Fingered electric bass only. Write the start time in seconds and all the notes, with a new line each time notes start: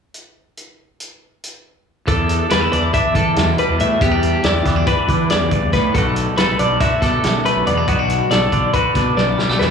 2.08 E2
2.51 E2
2.73 E2
3.15 E3
3.36 E2
3.69 E2
3.80 A2
4.01 E2
4.44 E2
4.66 E2
5.09 E3
5.31 E2
5.63 E2
5.73 A2
5.95 B1
6.38 B1
6.60 B1
7.02 B2
7.25 B1
7.57 B1
7.67 E2
7.88 B1
8.31 B1
8.52 B1
8.96 B2
9.17 B1
9.49 B1
9.60 E2